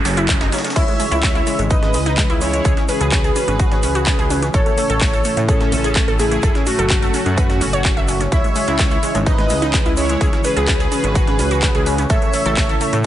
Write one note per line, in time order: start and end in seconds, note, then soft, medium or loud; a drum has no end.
0.00 0.72 C#3 medium
0.00 0.74 F#3 medium
0.00 0.72 A3 medium
0.00 0.74 F#4 medium
0.00 0.72 A4 medium
0.00 noise sweep medium
0.05 0.37 F#1 medium
0.05 0.14 C#4 medium
0.05 snare loud
0.05 open hi-hat loud
0.05 tambourine medium
0.05 shaker medium
0.17 0.26 E4 medium
0.17 closed hi-hat medium
0.17 shaker soft
0.29 0.38 C#4 medium
0.29 kick loud
0.29 clap loud
0.29 closed hi-hat medium
0.29 tambourine medium
0.29 shaker soft
0.41 0.50 F#1 loud
0.41 0.49 D#4 loud
0.41 snare loud
0.41 closed hi-hat soft
0.41 tambourine medium
0.41 shaker soft
0.52 0.61 C#4 medium
0.52 snare medium
0.52 open hi-hat medium
0.52 shaker medium
0.58 snare medium
0.58 open hi-hat medium
0.64 0.73 C#4 medium
0.64 snare medium
0.64 closed hi-hat medium
0.64 open hi-hat medium
0.64 shaker soft
0.70 snare medium
0.70 open hi-hat medium
0.76 0.85 C#2 loud
0.76 4.50 C#3 medium
0.76 6.39 E3 medium
0.76 4.50 G#3 medium
0.76 4.50 C#4 medium
0.76 0.85 E4 loud
0.76 2.63 E4 medium
0.76 1.61 C#5 medium
0.76 1.61 E5 medium
0.76 1.61 E5 loud
0.76 kick loud
0.76 closed hi-hat medium
0.76 crash medium
0.76 tambourine medium
0.76 shaker medium
0.88 0.97 G#3 medium
0.88 closed hi-hat soft
0.88 shaker soft
0.99 1.09 G#3 medium
0.99 open hi-hat loud
0.99 tambourine medium
0.99 shaker medium
1.11 1.43 C#2 loud
1.11 1.20 E4 medium
1.11 closed hi-hat medium
1.11 shaker soft
1.23 1.32 G#3 medium
1.23 kick loud
1.23 snare loud
1.23 clap loud
1.23 closed hi-hat medium
1.23 open hi-hat medium
1.23 shaker medium
1.35 1.44 E4 medium
1.35 closed hi-hat soft
1.35 shaker soft
1.47 1.56 G#3 medium
1.47 open hi-hat medium
1.47 tambourine medium
1.47 shaker loud
1.59 1.96 G#1 medium
1.59 1.68 G#3 medium
1.59 closed hi-hat medium
1.59 closed hi-hat soft
1.59 shaker soft
1.70 1.79 D#4 medium
1.70 2.32 B4 medium
1.70 2.32 D#5 loud
1.70 kick loud
1.70 closed hi-hat medium
1.70 tambourine medium
1.70 shaker medium
1.82 1.91 G#3 medium
1.82 snare medium
1.82 closed hi-hat soft
1.82 shaker soft
1.94 2.25 C#2 medium
1.94 2.03 G#3 medium
1.94 open hi-hat loud
1.94 tambourine medium
1.94 shaker medium
2.06 2.15 D#4 medium
2.06 snare soft
2.06 closed hi-hat medium
2.06 shaker soft
2.17 2.27 G#3 medium
2.17 kick loud
2.17 snare loud
2.17 clap loud
2.17 closed hi-hat medium
2.17 tambourine medium
2.17 shaker medium
2.29 2.61 C#2 loud
2.29 2.38 E4 medium
2.29 closed hi-hat soft
2.29 shaker soft
2.41 2.50 G#3 medium
2.41 2.84 E4 medium
2.41 2.84 C#5 medium
2.41 open hi-hat medium
2.41 tambourine medium
2.41 shaker loud
2.53 2.62 G#3 medium
2.53 closed hi-hat medium
2.53 closed hi-hat soft
2.53 shaker soft
2.65 2.74 C#2 loud
2.65 4.52 F#4 medium
2.65 2.74 G#4 loud
2.65 kick loud
2.65 closed hi-hat medium
2.65 tambourine medium
2.65 shaker medium
2.77 2.86 C#4 medium
2.77 snare medium
2.77 closed hi-hat soft
2.77 shaker soft
2.88 2.98 C#4 medium
2.88 4.45 G#4 medium
2.88 4.45 B4 loud
2.88 open hi-hat loud
2.88 tambourine medium
2.88 shaker medium
3.01 3.32 C#2 medium
3.01 3.09 G#4 medium
3.01 closed hi-hat medium
3.01 shaker soft
3.12 3.21 C#4 medium
3.12 kick loud
3.12 snare loud
3.12 clap loud
3.12 closed hi-hat medium
3.12 tambourine medium
3.12 shaker medium
3.24 3.33 G#4 medium
3.24 closed hi-hat soft
3.24 shaker soft
3.36 3.45 C#4 medium
3.36 open hi-hat loud
3.36 tambourine medium
3.36 shaker loud
3.48 3.85 G#1 medium
3.48 3.57 C#4 medium
3.48 closed hi-hat medium
3.48 shaker soft
3.59 3.69 F#4 medium
3.59 kick loud
3.59 closed hi-hat medium
3.59 tambourine medium
3.59 shaker medium
3.72 3.80 C#4 medium
3.72 snare medium
3.72 closed hi-hat soft
3.72 shaker soft
3.83 4.14 C#2 medium
3.83 3.92 C#4 medium
3.83 open hi-hat loud
3.83 tambourine medium
3.83 shaker medium
3.95 4.04 F#4 medium
3.95 closed hi-hat medium
3.95 shaker soft
4.06 4.16 C#4 medium
4.06 kick loud
4.06 snare loud
4.06 clap loud
4.06 closed hi-hat medium
4.06 tambourine medium
4.06 shaker soft
4.19 4.50 C#2 loud
4.19 4.27 G#4 loud
4.19 closed hi-hat soft
4.19 shaker soft
4.30 4.39 C#4 medium
4.30 open hi-hat medium
4.30 tambourine medium
4.30 shaker medium
4.42 4.51 C#4 medium
4.42 snare soft
4.42 closed hi-hat medium
4.42 shaker soft
4.54 4.63 A1 loud
4.54 8.28 A2 medium
4.54 8.28 C#3 medium
4.54 8.28 C#4 medium
4.54 6.41 E4 medium
4.54 4.63 A4 loud
4.54 5.39 A4 medium
4.54 5.39 C#5 loud
4.54 kick loud
4.54 closed hi-hat medium
4.54 tambourine medium
4.54 shaker medium
4.66 4.75 A3 medium
4.66 closed hi-hat soft
4.66 shaker soft
4.78 4.87 A3 medium
4.78 open hi-hat loud
4.78 tambourine medium
4.78 shaker medium
4.90 5.21 A1 loud
4.90 4.98 A4 medium
4.90 closed hi-hat medium
4.90 shaker soft
5.01 5.10 A3 medium
5.01 kick loud
5.01 snare loud
5.01 clap loud
5.01 closed hi-hat medium
5.01 open hi-hat medium
5.01 shaker medium
5.13 5.22 A4 medium
5.13 closed hi-hat soft
5.13 shaker soft
5.24 5.34 A3 medium
5.24 open hi-hat medium
5.24 tambourine medium
5.24 shaker loud
5.37 5.74 A2 medium
5.37 5.46 A3 medium
5.37 closed hi-hat soft
5.37 closed hi-hat medium
5.37 shaker soft
5.48 6.10 C#4 medium
5.48 5.58 G#4 medium
5.48 6.10 A4 medium
5.48 6.10 A4 loud
5.48 kick loud
5.48 closed hi-hat medium
5.48 tambourine medium
5.48 shaker medium
5.60 5.69 A3 medium
5.60 snare medium
5.60 closed hi-hat soft
5.60 shaker soft
5.72 6.03 A1 medium
5.72 5.81 A3 medium
5.72 open hi-hat loud
5.72 tambourine medium
5.72 shaker loud
5.84 5.93 G#4 medium
5.84 snare soft
5.84 closed hi-hat medium
5.84 shaker soft
5.96 6.05 A3 medium
5.96 kick loud
5.96 snare loud
5.96 clap loud
5.96 closed hi-hat medium
5.96 tambourine medium
5.96 shaker medium
6.08 6.39 A1 loud
6.08 6.16 A4 loud
6.08 closed hi-hat soft
6.08 shaker soft
6.19 6.28 A3 medium
6.19 6.62 E4 medium
6.19 6.62 G#4 loud
6.19 6.62 G#4 medium
6.19 open hi-hat medium
6.19 tambourine medium
6.19 shaker loud
6.31 6.40 A3 medium
6.31 closed hi-hat soft
6.31 shaker soft
6.42 6.52 F#1 loud
6.42 8.30 F#3 medium
6.42 8.30 F#4 medium
6.42 6.52 A4 loud
6.42 kick loud
6.42 closed hi-hat medium
6.42 tambourine medium
6.42 shaker medium
6.55 6.64 C#4 medium
6.55 snare medium
6.55 closed hi-hat soft
6.55 shaker soft
6.66 8.23 A3 medium
6.66 6.76 C#4 medium
6.66 8.23 F#4 loud
6.66 8.23 F#4 medium
6.66 open hi-hat loud
6.66 tambourine medium
6.66 shaker medium
6.78 7.10 F#1 medium
6.78 6.87 A4 medium
6.78 closed hi-hat medium
6.78 shaker soft
6.90 6.99 C#4 medium
6.90 kick loud
6.90 snare loud
6.90 clap loud
6.90 closed hi-hat medium
6.90 tambourine medium
6.90 shaker medium
7.02 7.11 A4 loud
7.02 closed hi-hat soft
7.02 shaker soft
7.14 7.23 C#4 medium
7.14 open hi-hat loud
7.14 tambourine medium
7.14 shaker loud
7.26 7.63 F#2 medium
7.26 7.35 C#4 medium
7.26 closed hi-hat soft
7.26 shaker soft
7.37 7.47 B4 medium
7.37 kick loud
7.37 closed hi-hat medium
7.37 tambourine medium
7.37 shaker medium
7.50 7.58 C#4 medium
7.50 snare medium
7.50 closed hi-hat soft
7.50 shaker soft
7.61 7.92 F#1 medium
7.61 7.70 C#4 medium
7.61 open hi-hat loud
7.61 tambourine medium
7.61 shaker loud
7.73 7.82 C#5 medium
7.73 closed hi-hat soft
7.73 shaker soft
7.85 7.94 C#4 medium
7.85 kick loud
7.85 snare loud
7.85 clap loud
7.85 closed hi-hat soft
7.85 tambourine medium
7.85 shaker medium
7.97 8.28 F#1 loud
7.97 8.05 E5 medium
7.97 closed hi-hat soft
7.97 shaker soft
8.08 8.17 C#4 medium
8.08 open hi-hat loud
8.08 tambourine medium
8.08 shaker loud
8.20 8.29 C#4 medium
8.20 snare soft
8.20 closed hi-hat soft
8.20 shaker soft
8.32 8.41 C#2 loud
8.32 13.06 C#3 medium
8.32 13.06 E3 medium
8.32 12.06 G#3 medium
8.32 12.06 C#4 medium
8.32 8.41 E4 loud
8.32 10.19 E4 medium
8.32 9.17 C#5 medium
8.32 9.17 E5 loud
8.32 kick loud
8.32 closed hi-hat medium
8.32 tambourine medium
8.32 shaker soft
8.44 8.53 G#3 medium
8.44 closed hi-hat soft
8.44 shaker soft
8.55 8.65 G#3 medium
8.55 open hi-hat loud
8.55 tambourine medium
8.55 shaker medium
8.67 8.99 C#2 loud
8.67 8.76 E4 medium
8.67 closed hi-hat medium
8.67 shaker soft
8.79 8.88 G#3 medium
8.79 kick loud
8.79 snare loud
8.79 clap loud
8.79 closed hi-hat medium
8.79 open hi-hat medium
8.79 shaker medium
8.91 9.00 E4 medium
8.91 closed hi-hat soft
8.91 shaker soft
9.03 9.12 G#3 medium
9.03 open hi-hat medium
9.03 tambourine medium
9.03 shaker medium
9.15 9.52 G#1 medium
9.15 9.23 G#3 medium
9.15 closed hi-hat soft
9.15 shaker soft
9.26 9.35 D#4 loud
9.26 9.88 B4 medium
9.26 9.88 D#5 medium
9.26 9.88 D#5 loud
9.26 kick loud
9.26 closed hi-hat soft
9.26 tambourine medium
9.26 shaker medium
9.38 9.47 G#3 medium
9.38 snare medium
9.38 closed hi-hat soft
9.38 shaker soft
9.50 9.81 C#2 medium
9.50 9.59 G#3 medium
9.50 open hi-hat loud
9.50 tambourine medium
9.50 shaker loud
9.62 9.71 D#4 medium
9.62 snare soft
9.62 closed hi-hat medium
9.62 shaker soft
9.73 9.83 G#3 medium
9.73 kick loud
9.73 snare loud
9.73 clap loud
9.73 closed hi-hat soft
9.73 tambourine medium
9.73 shaker medium
9.85 10.17 C#2 loud
9.85 9.94 E4 medium
9.85 closed hi-hat soft
9.85 shaker soft
9.97 10.06 G#3 medium
9.97 10.40 E4 medium
9.97 10.40 C#5 medium
9.97 10.40 C#5 loud
9.97 open hi-hat medium
9.97 tambourine medium
9.97 shaker loud
10.09 10.18 G#3 medium
10.09 closed hi-hat soft
10.09 closed hi-hat medium
10.09 shaker soft
10.21 10.30 C#2 loud
10.21 12.08 F#4 medium
10.21 10.30 G#4 loud
10.21 kick loud
10.21 closed hi-hat medium
10.21 tambourine medium
10.21 shaker soft
10.33 10.42 C#4 medium
10.33 snare medium
10.33 closed hi-hat soft
10.33 shaker soft
10.44 10.53 C#4 medium
10.44 12.01 G#4 medium
10.44 12.01 B4 medium
10.44 12.01 B4 loud
10.44 open hi-hat loud
10.44 tambourine medium
10.44 shaker medium
10.56 10.88 C#2 medium
10.56 10.65 G#4 medium
10.56 closed hi-hat medium
10.56 shaker soft
10.68 10.77 C#4 medium
10.68 kick loud
10.68 snare loud
10.68 clap loud
10.68 closed hi-hat medium
10.68 tambourine medium
10.68 shaker soft
10.80 10.89 G#4 medium
10.80 closed hi-hat soft
10.80 shaker soft
10.92 11.01 C#4 medium
10.92 open hi-hat medium
10.92 tambourine medium
10.92 shaker medium
11.03 11.40 G#1 medium
11.03 11.12 C#4 medium
11.03 closed hi-hat soft
11.03 shaker soft
11.15 11.24 F#4 loud
11.15 kick loud
11.15 closed hi-hat medium
11.15 tambourine medium
11.15 shaker medium
11.27 11.36 C#4 medium
11.27 snare medium
11.27 closed hi-hat soft
11.27 shaker soft
11.39 11.70 C#2 medium
11.39 11.48 C#4 medium
11.39 open hi-hat loud
11.39 tambourine medium
11.39 shaker medium
11.51 11.60 F#4 medium
11.51 closed hi-hat medium
11.51 shaker soft
11.62 11.72 C#4 medium
11.62 kick loud
11.62 snare loud
11.62 clap loud
11.62 closed hi-hat medium
11.62 tambourine medium
11.62 shaker medium
11.75 12.06 C#2 loud
11.75 11.83 G#4 medium
11.75 closed hi-hat soft
11.75 shaker soft
11.86 11.95 C#4 medium
11.86 open hi-hat medium
11.86 tambourine medium
11.86 shaker medium
11.98 12.07 C#4 medium
11.98 snare soft
11.98 closed hi-hat medium
11.98 shaker soft
12.10 12.19 A1 loud
12.10 13.06 A2 medium
12.10 13.06 C#4 medium
12.10 13.06 E4 medium
12.10 12.19 A4 loud
12.10 12.95 C#5 medium
12.10 12.95 E5 medium
12.10 12.95 E5 loud
12.10 kick loud
12.10 closed hi-hat medium
12.10 tambourine medium
12.10 shaker medium
12.22 12.31 A3 medium
12.22 closed hi-hat soft
12.22 shaker soft
12.33 12.43 A3 medium
12.33 open hi-hat loud
12.33 tambourine medium
12.33 shaker medium
12.46 12.77 A1 loud
12.46 12.54 A4 loud
12.46 closed hi-hat medium
12.46 shaker soft
12.56 12.66 A3 medium
12.56 kick loud
12.56 snare loud
12.56 clap loud
12.56 closed hi-hat medium
12.56 open hi-hat medium
12.56 shaker medium
12.69 12.78 A4 medium
12.69 closed hi-hat soft
12.69 shaker soft
12.81 12.90 A3 medium
12.81 open hi-hat medium
12.81 tambourine medium
12.81 shaker medium
12.93 13.06 A2 medium
12.93 13.01 A3 medium
12.93 closed hi-hat soft
12.93 closed hi-hat medium
12.93 shaker soft